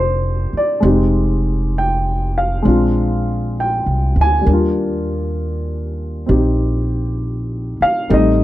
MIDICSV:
0, 0, Header, 1, 4, 480
1, 0, Start_track
1, 0, Tempo, 907716
1, 440, Time_signature, 4, 2, 24, 8
1, 4463, End_track
2, 0, Start_track
2, 0, Title_t, "Grand piano"
2, 0, Program_c, 0, 0
2, 0, Control_c, 0, 64, 127
2, 0, Note_on_c, 0, 58, 43
2, 0, Note_on_c, 0, 60, 39
2, 0, Note_on_c, 0, 62, 38
2, 0, Note_on_c, 0, 65, 37
2, 0, Note_on_c, 0, 67, 43
2, 0, Note_on_c, 0, 70, 60
2, 0, Note_on_c, 0, 72, 58
2, 286, Note_off_c, 0, 72, 0
2, 303, Note_on_c, 0, 74, 65
2, 425, Note_on_c, 0, 56, 42
2, 426, Note_off_c, 0, 60, 0
2, 434, Note_off_c, 0, 58, 0
2, 434, Note_on_c, 0, 60, 38
2, 435, Note_off_c, 0, 62, 0
2, 439, Note_off_c, 0, 65, 0
2, 443, Note_off_c, 0, 67, 0
2, 444, Note_on_c, 0, 63, 37
2, 446, Note_off_c, 0, 74, 0
2, 448, Control_c, 0, 64, 0
2, 449, Note_off_c, 0, 70, 0
2, 451, Note_on_c, 0, 67, 45
2, 526, Control_c, 0, 64, 127
2, 943, Note_on_c, 0, 79, 66
2, 1244, Note_off_c, 0, 79, 0
2, 1257, Note_on_c, 0, 77, 62
2, 1380, Note_off_c, 0, 56, 0
2, 1388, Note_on_c, 0, 56, 46
2, 1390, Note_off_c, 0, 60, 0
2, 1397, Note_on_c, 0, 60, 40
2, 1401, Note_off_c, 0, 63, 0
2, 1405, Note_off_c, 0, 67, 0
2, 1405, Control_c, 0, 64, 0
2, 1407, Note_on_c, 0, 62, 38
2, 1414, Note_on_c, 0, 65, 46
2, 1502, Control_c, 0, 64, 127
2, 1866, Note_off_c, 0, 77, 0
2, 1904, Note_on_c, 0, 79, 61
2, 2206, Note_off_c, 0, 79, 0
2, 2227, Note_on_c, 0, 80, 84
2, 2315, Note_off_c, 0, 80, 0
2, 2334, Note_on_c, 0, 55, 40
2, 2354, Note_on_c, 0, 58, 38
2, 2356, Note_off_c, 0, 56, 0
2, 2360, Note_off_c, 0, 60, 0
2, 2365, Note_off_c, 0, 62, 0
2, 2367, Control_c, 0, 64, 0
2, 2369, Note_off_c, 0, 65, 0
2, 2374, Note_on_c, 0, 62, 34
2, 2396, Note_on_c, 0, 65, 46
2, 2448, Control_c, 0, 64, 127
2, 3312, Note_on_c, 0, 60, 39
2, 3321, Note_on_c, 0, 63, 34
2, 3329, Note_on_c, 0, 67, 41
2, 4137, Note_on_c, 0, 77, 76
2, 4266, Note_off_c, 0, 55, 0
2, 4274, Note_off_c, 0, 60, 0
2, 4276, Note_off_c, 0, 58, 0
2, 4279, Note_off_c, 0, 63, 0
2, 4281, Note_on_c, 0, 55, 44
2, 4282, Note_off_c, 0, 77, 0
2, 4282, Note_on_c, 0, 57, 43
2, 4283, Note_off_c, 0, 67, 0
2, 4283, Note_on_c, 0, 60, 38
2, 4285, Note_off_c, 0, 62, 0
2, 4286, Control_c, 0, 64, 0
2, 4288, Note_on_c, 0, 63, 52
2, 4296, Note_off_c, 0, 65, 0
2, 4303, Note_on_c, 0, 75, 66
2, 4381, Control_c, 0, 64, 127
2, 4463, Note_off_c, 0, 55, 0
2, 4463, Note_off_c, 0, 57, 0
2, 4463, Note_off_c, 0, 60, 0
2, 4463, Note_off_c, 0, 63, 0
2, 4463, Note_off_c, 0, 75, 0
2, 4463, End_track
3, 0, Start_track
3, 0, Title_t, "Upright bass"
3, 0, Program_c, 1, 32
3, 0, Note_on_c, 1, 29, 71
3, 259, Note_off_c, 1, 29, 0
3, 437, Note_on_c, 1, 29, 75
3, 1377, Note_off_c, 1, 29, 0
3, 1403, Note_on_c, 1, 34, 65
3, 2021, Note_off_c, 1, 34, 0
3, 2043, Note_on_c, 1, 36, 46
3, 2191, Note_off_c, 1, 36, 0
3, 2199, Note_on_c, 1, 38, 54
3, 2349, Note_off_c, 1, 38, 0
3, 2361, Note_on_c, 1, 39, 72
3, 3301, Note_off_c, 1, 39, 0
3, 3325, Note_on_c, 1, 34, 68
3, 4103, Note_off_c, 1, 34, 0
3, 4285, Note_on_c, 1, 33, 78
3, 4463, Note_off_c, 1, 33, 0
3, 4463, End_track
4, 0, Start_track
4, 0, Title_t, "Muted upright bass strokes"
4, 280, Note_on_c, 9, 29, 33
4, 333, Note_off_c, 9, 29, 0
4, 4129, Note_on_c, 9, 29, 35
4, 4181, Note_off_c, 9, 29, 0
4, 4463, End_track
0, 0, End_of_file